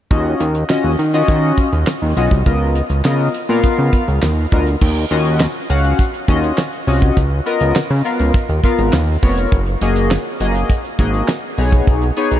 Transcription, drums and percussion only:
0.11 kick, closed hi-hat
0.40 closed hi-hat
0.55 closed hi-hat
0.69 snare, clap, closed hi-hat
0.99 closed hi-hat
1.14 closed hi-hat
1.28 kick, closed hi-hat
1.58 kick, closed hi-hat
1.72 closed hi-hat
1.87 snare, clap, closed hi-hat
2.17 closed hi-hat
2.31 kick, closed hi-hat
2.46 kick, closed hi-hat
2.75 closed hi-hat
2.90 closed hi-hat
3.05 snare, clap, closed hi-hat
3.34 closed hi-hat
3.49 closed hi-hat
3.64 kick, closed hi-hat
3.93 kick, closed hi-hat
4.08 closed hi-hat
4.22 snare, clap, closed hi-hat
4.52 kick, closed hi-hat
4.67 closed hi-hat
4.81 kick, crash
5.11 closed hi-hat
5.25 closed hi-hat
5.40 snare, clap, closed hi-hat
5.70 closed hi-hat
5.84 closed hi-hat
5.99 kick, closed hi-hat
6.14 closed hi-hat
6.28 kick, closed hi-hat
6.43 closed hi-hat
6.58 snare, clap, closed hi-hat
6.73 closed hi-hat
6.88 open hi-hat
7.02 kick, closed hi-hat
7.17 kick, closed hi-hat
7.46 closed hi-hat
7.61 closed hi-hat
7.75 snare, clap, closed hi-hat
7.91 closed hi-hat
8.05 closed hi-hat
8.19 closed hi-hat
8.34 kick, closed hi-hat
8.49 closed hi-hat
8.64 kick, closed hi-hat
8.79 closed hi-hat
8.93 snare, clap, closed hi-hat
9.23 kick, open hi-hat
9.37 closed hi-hat
9.52 kick, closed hi-hat
9.66 closed hi-hat
9.81 closed hi-hat
9.96 closed hi-hat
10.11 snare, clap, closed hi-hat
10.41 closed hi-hat
10.55 closed hi-hat
10.70 kick, closed hi-hat
10.84 closed hi-hat
10.99 kick, closed hi-hat
11.14 closed hi-hat
11.28 snare, clap, closed hi-hat
11.58 open hi-hat
11.72 kick, closed hi-hat
11.87 kick, closed hi-hat
12.02 closed hi-hat
12.17 closed hi-hat
12.31 closed hi-hat

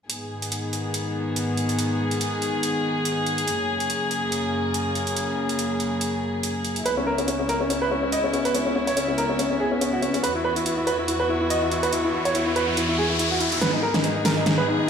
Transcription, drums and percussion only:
0.10 closed hi-hat
0.42 closed hi-hat
0.52 closed hi-hat
0.73 closed hi-hat
0.94 closed hi-hat
1.36 closed hi-hat
1.57 closed hi-hat
1.69 closed hi-hat
1.79 closed hi-hat
2.11 closed hi-hat
2.21 closed hi-hat
2.42 closed hi-hat
2.63 closed hi-hat
3.05 closed hi-hat
3.26 closed hi-hat
3.38 closed hi-hat
3.48 closed hi-hat
3.80 closed hi-hat
3.90 closed hi-hat
4.11 closed hi-hat
4.32 closed hi-hat
4.74 closed hi-hat
4.95 closed hi-hat
5.07 closed hi-hat
5.17 closed hi-hat
5.49 closed hi-hat
5.59 closed hi-hat
5.80 closed hi-hat
6.01 closed hi-hat
6.43 closed hi-hat
6.65 closed hi-hat
6.76 closed hi-hat
6.86 closed hi-hat
7.18 closed hi-hat
7.28 closed hi-hat
7.49 closed hi-hat
7.70 closed hi-hat
8.12 closed hi-hat
8.34 closed hi-hat
8.45 closed hi-hat
8.55 closed hi-hat
8.87 closed hi-hat
8.97 closed hi-hat
9.18 closed hi-hat
9.39 closed hi-hat
9.81 closed hi-hat
10.03 closed hi-hat
10.14 closed hi-hat
10.24 closed hi-hat
10.56 closed hi-hat
10.66 closed hi-hat
10.87 closed hi-hat
11.08 closed hi-hat
11.50 closed hi-hat
11.71 closed hi-hat
11.83 closed hi-hat
11.93 closed hi-hat
12.25 closed hi-hat
12.35 closed hi-hat
12.56 closed hi-hat
12.77 closed hi-hat
13.19 closed hi-hat
13.40 closed hi-hat
13.52 closed hi-hat
13.62 snare, closed hi-hat
13.94 snare, closed hi-hat
14.04 closed hi-hat
14.25 snare, open hi-hat
14.46 snare, closed hi-hat

